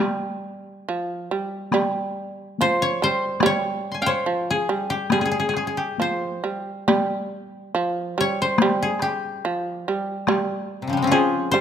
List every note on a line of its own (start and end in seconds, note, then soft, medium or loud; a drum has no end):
0.00 0.88 G3 medium
0.89 1.31 F3 medium
1.31 1.72 G3 medium
1.72 2.59 G3 medium
1.72 taiko rim medium
1.72 taiko high medium
2.58 3.02 F3 medium
2.58 2.88 C5 loud
2.58 taiko high soft
2.82 3.10 C#5 medium
3.02 3.42 G3 medium
3.02 3.52 C5 loud
3.40 4.26 G3 medium
3.40 taiko rim medium
3.40 taiko high medium
3.46 4.07 C#5 medium
3.92 4.08 G#5 soft
3.92 4.13 C6 soft
4.02 5.46 F5 medium
4.02 4.57 G5 soft
4.06 5.78 C5 medium
4.06 5.73 C#5 medium
4.26 4.69 F3 medium
4.51 4.96 G#4 medium
4.69 5.11 G3 medium
4.90 5.18 G4 medium
5.10 5.99 G3 medium
5.10 5.21 G#4 medium
5.10 taiko rim medium
5.10 taiko high medium
5.21 5.25 G#4 medium
5.25 5.31 G#4 medium
5.32 5.39 G#4 medium
5.40 5.48 G#4 medium
5.49 5.56 G#4 medium
5.53 5.67 G#4 medium
5.53 taiko rim soft
5.67 5.83 G#4 soft
5.77 7.81 G4 medium
5.98 6.43 F3 medium
5.98 7.73 C5 medium
5.98 taiko high soft
6.44 6.87 G3 medium
6.88 7.74 G3 medium
6.88 taiko rim soft
6.88 taiko high soft
7.75 8.17 F3 medium
8.18 8.60 G3 medium
8.18 8.48 C#5 loud
8.42 10.13 C5 medium
8.58 9.44 G3 medium
8.58 taiko rim medium
8.58 taiko high medium
8.82 9.08 G#4 medium
8.99 11.03 G4 medium
8.99 taiko rim soft
9.45 9.87 F3 medium
9.88 10.27 G3 medium
10.28 11.12 G3 medium
10.28 taiko rim medium
10.28 taiko high medium
10.82 11.10 C3 soft
10.88 11.08 C#3 soft
10.88 11.17 F3 soft
10.93 11.10 G3 soft
10.97 11.17 G#3 soft
11.02 11.61 C4 soft
11.02 11.58 C#4 medium
11.07 11.61 F4 medium
11.11 11.53 F3 medium
11.11 11.61 G4 medium
11.11 11.61 G#4 medium
11.52 11.61 G3 medium
11.52 11.61 C5 loud